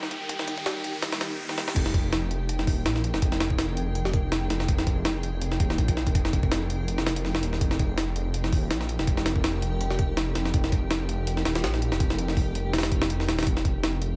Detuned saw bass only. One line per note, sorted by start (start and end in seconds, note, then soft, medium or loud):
1.76 2.66 F1 loud
2.67 2.87 D#1 medium
2.86 3.12 A#1 medium
3.14 4.49 F1 medium
4.51 4.67 F1 loud
4.69 5.59 F1 loud
5.60 5.80 D#1 medium
5.79 6.05 A#1 medium
6.07 7.45 F1 medium
7.43 7.60 D#1 loud
7.61 8.51 F1 medium
8.53 8.73 D#1 medium
8.71 8.98 A#1 medium
8.99 10.34 F1 medium
10.36 10.52 F1 medium
10.54 11.44 F1 loud
11.46 11.65 D#1 medium
11.64 11.90 A#1 medium
11.92 13.30 F1 medium
13.29 13.45 D#1 loud
13.47 14.16 F1 loud